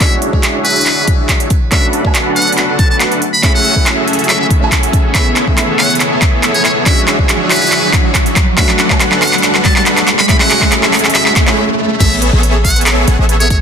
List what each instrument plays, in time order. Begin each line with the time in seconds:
Already playing: analog synth pad E4, riser
0.00 808-style bass E1, analog synth pad D3 F#3 C#5, felt piano G#3 C#4 D4 F#4, supersaw synth D4 F#4 G#4 C#5 E5, muted trumpet E5, kick, clap, closed hi-hat
0.22 closed hi-hat
0.31 808-style bass E1, felt piano G#3 D4 G#4 C#5, supersaw synth D4 F#4 G#4 C#5 E5, kick
0.43 clap, closed hi-hat
0.65 muted trumpet B4, closed hi-hat
0.70 closed hi-hat
0.76 closed hi-hat
0.81 closed hi-hat
0.86 clap, closed hi-hat
1.07 kick, closed hi-hat
1.29 kick, clap, closed hi-hat
1.40 closed hi-hat
1.50 analog synth pad F#3 A3 B3 F#4, kick, closed hi-hat
1.71 808-style bass B1, felt piano A3 C#4 D4 F#4, supersaw synth D4 F#4 A4 B4 F#5, muted trumpet E5, kick, clap, closed hi-hat
1.93 closed hi-hat
2.03 808-style bass B1, felt piano A3 D4 C#5, supersaw synth D4 F#4 A4 B4 F#5, kick
2.07 felt piano G#5
2.15 clap, closed hi-hat
2.36 muted trumpet F#5, closed hi-hat
2.42 closed hi-hat
2.47 closed hi-hat
2.52 closed hi-hat
2.58 clap, closed hi-hat
2.79 muted trumpet A5, kick, closed hi-hat
2.90 muted trumpet A5
3.00 clap, closed hi-hat
3.12 closed hi-hat
3.22 analog synth pad C#3 F#3 E4, closed hi-hat
3.33 muted trumpet B5
3.42 808-style bass A1, felt piano A3 C#4 E4 G#4, supersaw synth C#4 F#4 G#4 A4 E5, muted trumpet B5, kick, clap, closed hi-hat
3.55 muted trumpet F#5
3.65 closed hi-hat
3.74 808-style bass A1, felt piano A3 C#4 E4, supersaw synth C#4 F#4 G#4 A4 E5, kick
3.86 clap, closed hi-hat
4.08 closed hi-hat
4.13 closed hi-hat
4.19 closed hi-hat
4.24 closed hi-hat
4.29 muted trumpet E5, clap, closed hi-hat
4.40 muted trumpet E5
4.50 kick, closed hi-hat
4.60 felt piano A3 C#4 E4 G#5
4.72 kick, clap, closed hi-hat
4.83 closed hi-hat
4.93 kick, closed hi-hat
5.14 808-style bass A1, felt piano B3 C#4 E4 G#4, supersaw synth B3 G#4 A4 C#5 E5, analog synth pad B3, muted trumpet E5, kick, clap, closed hi-hat
5.36 clap, closed hi-hat
5.45 808-style bass A1, felt piano B3 C#4 E4, supersaw synth B3 G#4 A4 C#5 E5, kick
5.49 felt piano A3
5.58 clap, closed hi-hat
5.79 muted trumpet F#5, clap, open hi-hat
5.85 closed hi-hat
5.90 closed hi-hat
5.95 closed hi-hat
6.00 clap, closed hi-hat
6.22 kick, clap, closed hi-hat
6.43 clap, closed hi-hat
6.54 muted trumpet C#5, closed hi-hat
6.65 muted trumpet C#5, clap, closed hi-hat
6.85 808-style bass E1, analog synth pad D3 F#3 E4 C#5, felt piano G#3 C#4 D4 F#4, supersaw synth D4 F#4 G#4 C#5 E5, muted trumpet E5, kick, clap, closed hi-hat
7.08 clap, closed hi-hat
7.17 808-style bass E1, felt piano G#3 D4 C#5, supersaw synth D4 F#4 G#4 C#5 E5, kick
7.21 felt piano G#4
7.29 clap, closed hi-hat
7.50 muted trumpet B4, clap, open hi-hat
7.56 closed hi-hat
7.62 closed hi-hat
7.67 closed hi-hat
7.72 clap, closed hi-hat
7.93 kick, clap, closed hi-hat
8.15 kick, clap, closed hi-hat
8.26 closed hi-hat
8.36 analog synth pad D3 A3 B3 F#4, kick, clap, closed hi-hat
8.56 808-style bass B1, felt piano A3 C#4 D4 F#4, supersaw synth D4 F#4 A4 B4 F#5, muted trumpet E5, kick, clap, closed hi-hat
8.69 clap
8.79 clap, closed hi-hat
8.88 808-style bass B1, felt piano A3 D4 C#5 G#5, supersaw synth D4 F#4 A4 B4 F#5, kick, clap
9.00 clap, closed hi-hat
9.12 clap
9.22 muted trumpet F#5, clap, open hi-hat
9.28 closed hi-hat
9.33 clap, closed hi-hat
9.38 closed hi-hat
9.43 clap, closed hi-hat
9.55 clap
9.65 muted trumpet A5, kick, clap, closed hi-hat
9.76 muted trumpet A5, clap
9.86 clap, closed hi-hat
9.97 clap, closed hi-hat
10.08 analog synth pad E3 C#4 F#4, clap, closed hi-hat
10.19 muted trumpet B5, clap
10.28 808-style bass A1, felt piano A3 C#4 E4 G#4, supersaw synth C#4 F#4 G#4 A4 E5, muted trumpet B5, kick, clap, closed hi-hat
10.40 muted trumpet F#5, clap
10.50 clap, closed hi-hat
10.60 808-style bass A1, felt piano A3 C#4 E4, supersaw synth C#4 F#4 G#4 A4 E5, kick, clap
10.72 clap, closed hi-hat
10.83 clap
10.93 clap, open hi-hat
10.99 closed hi-hat
11.05 clap, closed hi-hat
11.10 closed hi-hat
11.14 muted trumpet E5, clap, closed hi-hat
11.26 muted trumpet E5, clap
11.36 808-style bass A1, supersaw synth C#4 F#4 G#4 A4 F#5, kick, clap, closed hi-hat
11.45 808-style bass A1, felt piano A3 C#4 E4, supersaw synth C#4 F#4 G#4 A4 C#5, clap
11.49 felt piano G#4
12.00 808-style bass A1, supersaw synth B3 G#4 A4 C#5 E5, synth arpeggio sound G#4, muted trumpet E5, kick, closed hi-hat, crash
12.22 synth arpeggio sound B4, closed hi-hat
12.33 808-style bass A1, supersaw synth B3 G#4 A4 C#5 E5, synth arpeggio sound G#4
12.43 synth arpeggio sound C#5, closed hi-hat
12.55 synth arpeggio sound G#4
12.65 muted trumpet F#5, kick, open hi-hat
12.70 closed hi-hat
12.76 synth arpeggio sound B4, closed hi-hat
12.81 closed hi-hat
12.86 synth arpeggio sound G#4, clap, closed hi-hat
12.97 synth arpeggio sound C#5
13.08 808-style bass A1, supersaw synth B3 G#4 A4 C#5 F#5, synth arpeggio sound G#4, closed hi-hat
13.19 808-style bass A1, supersaw synth B3 G#4 A4 C#5 E5, synth arpeggio sound G#4
13.29 synth arpeggio sound B4, closed hi-hat
13.40 synth arpeggio sound G#4, muted trumpet C#5, closed hi-hat
13.50 synth arpeggio sound C#5, muted trumpet C#5, kick, closed hi-hat